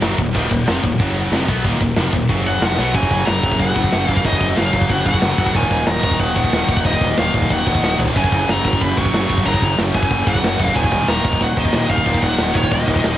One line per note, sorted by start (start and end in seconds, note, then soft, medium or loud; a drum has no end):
0.00 0.17 F#1 loud
0.00 0.17 F#2 medium
0.00 0.18 C#3 loud
0.00 0.97 D#3 medium
0.00 0.18 F#3 loud
0.00 0.97 A#3 medium
0.00 2.92 F#4 medium
0.00 0.97 A#4 medium
0.00 snare loud
0.00 china medium
0.18 0.33 D#1 medium
0.18 0.31 D#2 medium
0.18 0.32 A#2 medium
0.18 kick loud
0.35 0.50 D#1 medium
0.35 0.50 D#2 medium
0.35 0.51 A#2 loud
0.35 0.51 D#3 loud
0.35 kick loud
0.35 china medium
0.35 crash loud
0.51 0.66 D#1 medium
0.51 0.64 D#2 medium
0.51 0.64 A#2 medium
0.51 kick loud
0.67 0.82 F1 loud
0.67 0.83 F2 loud
0.67 0.83 C3 medium
0.67 0.84 F3 loud
0.67 snare loud
0.67 china medium
0.84 0.99 D#1 medium
0.84 0.96 D#2 medium
0.84 0.97 A#2 medium
0.84 kick loud
1.00 1.30 F#1 loud
1.00 1.32 F#2 medium
1.00 1.32 C#3 medium
1.00 1.32 C#3 loud
1.00 1.33 F#3 medium
1.00 1.33 F#3 loud
1.00 1.32 C#5 medium
1.00 kick loud
1.00 china medium
1.32 1.47 F1 loud
1.32 1.48 F2 medium
1.32 1.48 C3 medium
1.32 2.29 D#3 medium
1.32 1.48 F3 loud
1.32 2.29 A#3 medium
1.32 2.29 A#4 medium
1.32 snare loud
1.32 china medium
1.48 1.64 B1 loud
1.48 1.64 B2 medium
1.48 1.64 F#3 medium
1.48 1.65 B3 loud
1.48 kick loud
1.64 1.80 D#1 loud
1.64 1.80 D#2 medium
1.64 1.81 A#2 medium
1.64 1.81 D#3 loud
1.64 kick loud
1.64 china medium
1.81 1.96 D#1 medium
1.81 1.94 D#2 medium
1.81 1.95 A#2 medium
1.81 kick loud
1.96 2.12 F1 loud
1.96 2.13 F2 medium
1.96 2.13 C3 medium
1.96 2.13 F3 loud
1.96 snare loud
1.96 china medium
2.13 2.28 D#1 medium
2.13 2.27 D#2 medium
2.13 2.27 A#2 medium
2.13 kick medium
2.29 2.59 F#1 loud
2.29 2.61 F#2 loud
2.29 2.62 C#3 loud
2.29 2.62 C#3 medium
2.29 2.62 F#3 loud
2.29 2.62 F#3 medium
2.29 2.62 C#5 medium
2.29 kick loud
2.29 china medium
2.47 2.97 F#5 medium
2.61 2.77 F1 medium
2.61 2.78 F2 medium
2.61 2.77 C3 medium
2.61 2.94 D#3 medium
2.61 2.78 F3 loud
2.61 2.92 A#3 medium
2.61 2.92 A#4 medium
2.61 snare loud
2.61 china medium
2.77 2.93 B1 medium
2.77 2.94 B2 medium
2.77 2.94 F#3 loud
2.77 2.94 B3 loud
2.77 snare medium
2.93 3.07 F#1 medium
2.93 3.74 F#2 medium
2.93 5.52 C#3 medium
2.93 3.75 C#3 medium
2.93 3.74 F#3 loud
2.93 5.52 A#3 medium
2.93 10.72 F#4 medium
2.93 10.71 A#4 medium
2.93 3.26 G#5 medium
2.93 kick loud
2.93 crash loud
2.93 crash medium
3.03 kick medium
3.11 3.23 F#1 medium
3.11 kick medium
3.11 crash medium
3.26 3.40 F#1 medium
3.26 3.60 A#5 medium
3.26 snare loud
3.26 crash medium
3.43 3.55 F#1 medium
3.43 kick medium
3.43 crash medium
3.52 kick medium
3.59 3.72 F#1 medium
3.59 4.07 F#5 medium
3.59 kick loud
3.59 crash medium
3.74 3.88 F#1 medium
3.74 3.89 F#2 medium
3.74 3.91 C#3 medium
3.74 3.94 F#3 medium
3.74 kick medium
3.74 crash medium
3.84 kick medium
3.90 4.05 F#1 loud
3.90 4.21 F#2 medium
3.90 4.23 C#3 medium
3.90 4.25 F#3 medium
3.90 snare loud
3.90 crash medium
4.07 4.21 F#1 medium
4.07 4.22 F#2 medium
4.07 4.24 C#3 medium
4.07 4.26 F#3 medium
4.07 4.25 F5 medium
4.07 kick medium
4.07 crash medium
4.17 kick medium
4.23 4.37 F#1 loud
4.23 5.04 F#2 medium
4.23 5.05 C#3 medium
4.23 5.04 F#3 medium
4.23 4.57 D#5 medium
4.23 kick loud
4.23 crash medium
4.33 kick medium
4.40 4.53 F#1 loud
4.40 kick medium
4.40 crash medium
4.57 4.70 F#1 medium
4.57 4.90 F5 medium
4.57 snare loud
4.57 crash medium
4.73 4.86 F#1 medium
4.73 kick medium
4.73 crash medium
4.81 kick medium
4.89 5.02 F#1 medium
4.89 5.05 F#5 loud
4.89 kick loud
4.89 crash medium
5.05 5.18 F#1 medium
5.05 5.21 F#2 medium
5.05 5.22 C#3 medium
5.05 5.25 F#3 medium
5.05 5.57 F#5 medium
5.05 kick medium
5.05 crash medium
5.14 kick medium
5.22 5.35 F#1 loud
5.22 5.53 F#2 medium
5.22 5.55 C#3 medium
5.22 5.56 F#3 medium
5.22 snare loud
5.22 crash medium
5.38 5.50 F#1 medium
5.38 5.53 F#2 medium
5.38 5.54 C#3 medium
5.38 5.56 F#3 medium
5.38 kick medium
5.38 crash medium
5.46 kick medium
5.53 5.67 D#1 medium
5.53 6.35 D#2 medium
5.53 6.36 A#2 medium
5.53 8.14 D#3 medium
5.53 6.34 D#3 loud
5.53 13.18 A#3 medium
5.53 5.87 G#5 loud
5.53 kick loud
5.53 crash loud
5.63 kick medium
5.71 5.83 D#1 medium
5.71 kick medium
5.71 crash medium
5.86 6.00 D#1 loud
5.86 6.18 A#5 loud
5.86 snare loud
5.86 crash medium
6.03 6.16 D#1 loud
6.03 kick medium
6.03 crash medium
6.11 kick medium
6.19 6.32 D#1 medium
6.19 6.81 F#5 loud
6.19 kick loud
6.19 crash medium
6.35 6.49 D#1 medium
6.35 6.51 D#2 medium
6.35 6.52 A#2 medium
6.35 6.51 D#3 medium
6.35 kick medium
6.35 crash medium
6.44 kick medium
6.52 6.65 D#1 loud
6.52 6.84 D#2 medium
6.52 6.85 A#2 medium
6.52 6.86 D#3 medium
6.52 snare loud
6.52 crash medium
6.68 6.81 D#1 medium
6.68 6.83 D#2 medium
6.68 6.85 A#2 medium
6.68 6.84 D#3 medium
6.68 kick medium
6.68 crash medium
6.77 kick medium
6.85 6.98 D#1 loud
6.85 7.65 D#2 medium
6.85 7.66 A#2 loud
6.85 7.64 D#3 medium
6.85 7.16 D#5 medium
6.85 kick loud
6.85 crash medium
6.93 kick medium
7.01 7.13 D#1 loud
7.01 kick medium
7.01 crash medium
7.17 7.30 D#1 medium
7.17 7.52 F5 loud
7.17 snare loud
7.17 crash medium
7.34 7.46 D#1 medium
7.34 kick loud
7.34 crash medium
7.42 kick medium
7.50 7.62 D#1 medium
7.50 7.97 F#5 loud
7.50 kick loud
7.50 crash medium
7.65 7.79 D#1 medium
7.65 7.80 D#2 medium
7.65 7.82 A#2 medium
7.65 7.81 D#3 medium
7.65 kick medium
7.65 crash medium
7.75 kick medium
7.82 7.95 D#1 medium
7.82 8.14 D#2 medium
7.82 8.15 A#2 medium
7.82 8.16 D#3 medium
7.82 snare medium
7.99 8.11 D#1 medium
7.99 8.15 D#2 medium
7.99 8.16 A#2 medium
7.99 8.14 D#3 medium
7.99 floor tom loud
8.14 8.28 F#1 medium
8.14 8.95 F#2 medium
8.14 10.73 C#3 medium
8.14 8.96 C#3 medium
8.14 8.96 F#3 medium
8.14 8.50 G#5 loud
8.14 kick loud
8.14 crash medium
8.24 kick medium
8.32 8.44 F#1 medium
8.32 kick medium
8.32 crash medium
8.49 8.61 F#1 medium
8.49 8.79 A#5 loud
8.49 snare loud
8.49 crash medium
8.65 8.77 F#1 medium
8.65 kick medium
8.65 crash medium
8.73 kick medium
8.81 8.93 F#1 loud
8.81 8.98 B5 loud
8.81 kick loud
8.81 crash medium
8.96 9.09 F#1 medium
8.96 9.11 F#2 medium
8.96 9.13 C#3 medium
8.96 9.15 F#3 medium
8.96 9.13 C#6 loud
8.96 kick medium
8.96 crash medium
9.06 kick medium
9.12 9.26 F#1 loud
9.12 9.43 F#2 medium
9.12 9.45 C#3 medium
9.12 9.47 F#3 medium
9.12 9.46 C#6 loud
9.12 snare loud
9.12 crash medium
9.28 9.42 F#1 medium
9.28 9.43 F#2 medium
9.28 9.44 C#3 medium
9.28 9.47 F#3 medium
9.28 kick medium
9.28 crash medium
9.38 kick medium
9.44 9.58 F#1 medium
9.44 10.25 F#2 medium
9.44 10.26 C#3 medium
9.44 10.26 F#3 loud
9.44 9.76 A#5 loud
9.44 kick loud
9.44 crash medium
9.54 kick medium
9.62 9.75 F#1 loud
9.62 kick medium
9.62 crash medium
9.78 9.91 F#1 medium
9.78 snare loud
9.78 crash medium
9.95 10.07 F#1 loud
9.95 10.28 G#5 loud
9.95 kick loud
9.95 crash medium
10.03 kick medium
10.11 10.23 F#1 loud
10.11 kick loud
10.11 crash medium
10.26 10.39 F#1 medium
10.26 10.40 F#2 medium
10.26 10.42 C#3 medium
10.26 10.44 F#3 medium
10.26 10.65 F#5 loud
10.26 kick medium
10.26 crash medium
10.35 kick medium
10.41 10.55 F#1 loud
10.41 10.73 F#2 medium
10.41 10.75 C#3 medium
10.41 10.77 F#3 medium
10.41 snare loud
10.41 crash medium
10.58 10.72 F#1 medium
10.58 10.75 F#2 medium
10.58 10.75 C#3 medium
10.58 10.77 F#3 medium
10.58 kick medium
10.58 crash medium
10.65 10.75 F5 loud
10.65 kick medium
10.74 10.88 D#1 medium
10.74 11.58 D#2 medium
10.74 11.56 A#2 loud
10.74 13.18 D#3 medium
10.74 11.55 D#3 loud
10.74 13.18 F#4 medium
10.74 13.18 A#4 medium
10.74 11.09 G#5 loud
10.74 kick loud
10.74 crash medium
10.84 kick medium
10.92 11.04 D#1 loud
10.92 kick medium
10.92 crash medium
11.08 11.20 D#1 loud
11.08 11.42 A#5 loud
11.08 snare loud
11.08 crash medium
11.24 11.37 D#1 loud
11.24 kick medium
11.24 crash medium
11.33 kick medium
11.40 11.53 D#1 medium
11.40 11.58 F#5 medium
11.40 kick loud
11.40 crash loud
11.55 11.69 D#1 medium
11.55 11.72 D#2 medium
11.55 11.72 A#2 medium
11.55 11.76 D#3 medium
11.55 11.91 D#5 medium
11.55 kick medium
11.55 crash medium
11.65 kick medium
11.72 11.86 D#1 loud
11.72 12.05 D#2 medium
11.72 12.06 A#2 medium
11.72 snare loud
11.72 crash medium
11.76 12.08 D#3 medium
11.89 12.02 D#1 medium
11.89 12.05 D#2 medium
11.89 12.06 A#2 medium
11.89 12.08 D#3 loud
11.89 12.20 F5 loud
11.89 kick medium
11.89 crash medium
11.98 kick medium
12.05 12.18 D#1 medium
12.05 12.86 D#2 medium
12.05 12.87 A#2 loud
12.05 12.86 D#3 loud
12.05 kick loud
12.05 crash medium
12.14 kick medium
12.22 12.35 D#1 loud
12.22 12.56 F#5 loud
12.22 kick medium
12.22 crash medium
12.38 12.51 D#1 loud
12.38 snare loud
12.38 crash medium
12.55 12.68 D#1 loud
12.55 12.70 C#5 medium
12.55 kick medium
12.55 crash medium
12.63 kick medium
12.71 12.84 D#1 loud
12.71 13.17 D#5 medium
12.71 kick loud
12.71 crash medium
12.87 13.00 D#1 medium
12.87 13.02 D#2 medium
12.87 13.04 A#2 medium
12.87 13.03 D#3 medium
12.87 kick medium
12.87 crash medium
12.96 kick medium
13.03 13.17 D#1 medium
13.03 13.18 D#2 medium
13.03 13.18 A#2 medium
13.03 13.18 D#3 medium
13.03 snare loud
13.03 crash medium